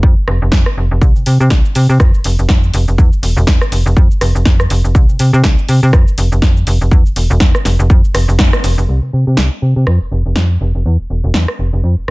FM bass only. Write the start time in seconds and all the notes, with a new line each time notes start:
0.03 F2
0.17 F1
0.28 F1
0.42 F1
0.52 F2
0.77 F1
0.91 F1
1.02 C2
1.16 C3
1.27 C3
1.40 C3
1.51 C2
1.76 C3
1.89 C3
2.00 F2
2.14 F1
2.25 F1
2.39 F1
2.49 F2
2.74 F1
2.88 F1
2.98 E2
3.12 E1
3.23 E1
3.37 E1
3.72 F1
3.86 F1
3.97 F2
4.10 F1
4.21 F1
4.35 F1
4.46 F2
4.70 F1
4.84 F1
4.95 C2
5.09 C3
5.20 C3
5.33 C3
5.44 C2
5.69 C3
5.83 C3
5.93 F2
6.07 F1
6.18 F1
6.32 F1
6.42 F2
6.67 F1
6.81 F1
6.92 E2
7.06 E1
7.16 E1
7.30 E1
7.41 E2
7.65 F1
7.79 F1
7.90 F2
8.04 F1
8.14 F1
8.28 F1
8.39 F2
8.64 F1
8.78 F1
8.89 C2
9.13 C3
9.27 C3
9.38 C2
9.62 C3
9.76 C3
9.87 F2
10.01 F1
10.11 F1
10.26 F1
10.36 F2
10.61 F1
10.75 F1
10.86 E2
10.99 E1
11.10 E1
11.24 E1
11.34 E2
11.59 F1
11.73 F1
11.83 F2
11.97 F1